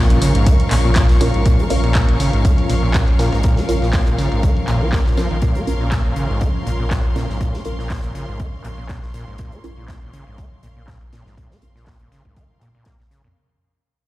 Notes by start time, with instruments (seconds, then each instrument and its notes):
Already playing: analog synth pad F3 C#4 A#4, string section A#4 F5 C#6
0.10 sub bass G#1, acid bass A#2, closed hi-hat
0.21 acid bass C#3, snare, closed hi-hat, open hi-hat
0.35 sub bass A#1, acid bass G#2, closed hi-hat
0.46 acid bass A#3, kick, closed hi-hat
0.60 closed hi-hat
0.71 sub bass A#1, acid bass A#2, clap, closed hi-hat, open hi-hat
0.85 acid bass A#2
0.96 acid bass A#2, kick, snare, clap, closed hi-hat
1.09 acid bass A#1, sub bass A#1, snare, closed hi-hat
1.20 acid bass A#2, synth stab C#4 F4 A#4, snare, closed hi-hat, open hi-hat
1.34 sub bass A#1, acid bass G#2, closed hi-hat
1.46 acid bass A#2, kick, closed hi-hat
1.59 acid bass A#3, closed hi-hat
1.70 sub bass A#1, synth stab C#4 F4 A#4, closed hi-hat, open hi-hat
1.84 acid bass A#2, closed hi-hat
1.95 acid bass A#2, kick, snare, clap, closed hi-hat
2.09 sub bass G#1, acid bass A#2, closed hi-hat
2.20 acid bass C#3, closed hi-hat, open hi-hat
2.33 sub bass A#1, acid bass G#2, closed hi-hat
2.45 acid bass A#3, kick, closed hi-hat
2.58 closed hi-hat
2.70 sub bass A#1, acid bass A#2, closed hi-hat, open hi-hat
2.83 acid bass A#2
2.94 acid bass A#2, kick, snare, clap, closed hi-hat
3.08 acid bass A#1, sub bass A#1, closed hi-hat
3.19 acid bass A#2, synth stab C#4 F4 A#4, snare, closed hi-hat, open hi-hat
3.33 sub bass A#1, acid bass G#2, snare, closed hi-hat
3.43 acid bass A#2, kick, closed hi-hat
3.57 acid bass A#3, snare, closed hi-hat
3.69 sub bass A#1, synth stab C#4 F4 A#4, closed hi-hat, open hi-hat
3.82 acid bass A#2, snare, closed hi-hat
3.93 acid bass A#2, kick, snare, clap, closed hi-hat, open hi-hat
4.07 sub bass G#1, acid bass A#2, closed hi-hat
4.18 acid bass C#3, snare, closed hi-hat, open hi-hat
4.32 sub bass A#1, acid bass G#2, closed hi-hat
4.43 acid bass A#3, kick, closed hi-hat
4.57 closed hi-hat
4.68 sub bass A#1, acid bass A#2, clap, closed hi-hat, open hi-hat
4.81 acid bass F3, string section C6
4.92 acid bass A#3, kick, snare, clap, closed hi-hat
5.06 sub bass A#1, acid bass A#2, snare, closed hi-hat
5.17 acid bass F3, synth stab C#4 F4 A#4, snare, closed hi-hat, open hi-hat
5.31 sub bass A#1, acid bass D#3, closed hi-hat
5.42 acid bass A#2, analog synth pad C#5, kick, closed hi-hat
5.55 acid bass A#3, closed hi-hat
5.67 sub bass A#1, synth stab C#4 F4 A#4, closed hi-hat
5.81 acid bass A#2
5.92 acid bass A#2, kick, snare, clap, closed hi-hat
6.05 sub bass G#1, acid bass A#2
6.16 acid bass C#3, closed hi-hat
6.30 sub bass A#1, acid bass G#2
6.41 acid bass A#3, kick, closed hi-hat
6.66 sub bass A#1, acid bass A#2, closed hi-hat
6.80 acid bass A#2
6.91 acid bass A#2, kick, snare, clap, closed hi-hat
7.04 acid bass A#1, sub bass A#1
7.16 acid bass A#2, synth stab C#4 F4 A#4, snare, closed hi-hat
7.29 sub bass A#1, acid bass G#2, snare
7.41 acid bass A#2, kick, closed hi-hat
7.53 acid bass A#3, snare
7.65 sub bass A#1, synth stab C#4 F4 A#4, closed hi-hat
7.79 acid bass A#2, snare
7.90 acid bass A#2, kick, snare, clap, open hi-hat
8.03 sub bass G#1, acid bass A#2, closed hi-hat
8.15 acid bass C#3, snare, closed hi-hat
8.28 sub bass A#1, acid bass G#2
8.40 acid bass A#3, kick, closed hi-hat
8.64 sub bass A#1, acid bass A#2, clap, closed hi-hat
8.78 acid bass A#2
8.89 acid bass A#2, kick, snare, clap, closed hi-hat
9.03 acid bass A#1, sub bass A#1, snare
9.14 acid bass A#2, snare, closed hi-hat
9.28 sub bass A#1, acid bass G#2
9.38 acid bass A#2, kick, closed hi-hat
9.52 acid bass A#3, closed hi-hat
9.64 sub bass A#1, synth stab C#4 F4 A#4, closed hi-hat
9.77 acid bass A#2
9.88 acid bass A#2, kick, snare, clap, closed hi-hat
10.02 sub bass G#1, acid bass A#2
10.13 acid bass C#3, closed hi-hat
10.27 sub bass A#1, acid bass G#2
10.38 acid bass A#3, kick, closed hi-hat
10.63 sub bass A#1, acid bass A#2, closed hi-hat
10.76 acid bass A#2
10.87 acid bass A#2, kick, snare, clap, closed hi-hat
11.01 acid bass A#1, sub bass A#1
11.12 acid bass A#2, synth stab C#4 F4 A#4, snare, closed hi-hat
11.26 sub bass A#1, acid bass G#2, snare
11.37 acid bass A#2, kick, closed hi-hat
11.51 acid bass A#3, snare
11.62 sub bass A#1, synth stab C#4 F4 A#4, closed hi-hat
11.76 acid bass A#2, snare
11.86 acid bass A#2, kick, snare, clap, open hi-hat
12.00 sub bass G#1, acid bass A#2, closed hi-hat
12.12 acid bass C#3, snare, closed hi-hat
12.25 sub bass A#1, acid bass G#2, kick
12.36 acid bass A#3, kick, closed hi-hat
12.61 sub bass A#2, acid bass A#2, clap, closed hi-hat
12.75 acid bass A#2
12.85 acid bass A#3, kick, snare, clap, closed hi-hat
12.99 sub bass A#1, acid bass A#2, snare
13.11 acid bass C#3, snare, closed hi-hat
13.24 sub bass F2, acid bass A#2